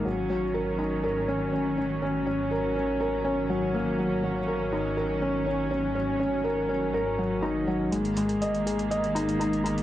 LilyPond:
<<
  \new Staff \with { instrumentName = "Felt piano" } { \time 4/4 \key dis \minor \tempo 4 = 122 fis8 fis8 ais'8 dis'8 ais'8 cis'8 cis'8 cis'8 | cis'8 cis'8 ais'8 cis'8 ais'8 cis'8 fis8 ais8 | fis8 fis8 ais'8 dis'8 ais'8 cis'8 cis'8 cis'8 | cis'8 cis'8 ais'8 cis'8 ais'8 fis8 dis'8 fis8 |
gis8 gis8 dis''8 gis'8 dis''8 dis'8 dis'8 dis'8 | }
  \new Staff \with { instrumentName = "String section" } { \clef bass \time 4/4 \key dis \minor <dis fis cis'>1~ | <dis fis cis'>1~ | <dis fis cis'>1~ | <dis fis cis'>1 |
<dis gis ais>1 | }
  \new Staff \with { instrumentName = "Detuned saw bass" } { \clef bass \time 4/4 \key dis \minor gis,,1~ | gis,,1~ | gis,,1~ | gis,,1 |
gis,,1 | }
  \new DrumStaff \with { instrumentName = "Drums" } \drummode { \time 4/4 r4 r4 r4 r4 | r4 r4 r4 r4 | r4 r4 r4 r4 | r4 r4 r4 r4 |
hh16 hh16 hh16 hh16 hh16 hh16 hh16 hh16 hh16 hh16 hh16 hh16 hh16 hh16 hh16 hh16 | }
>>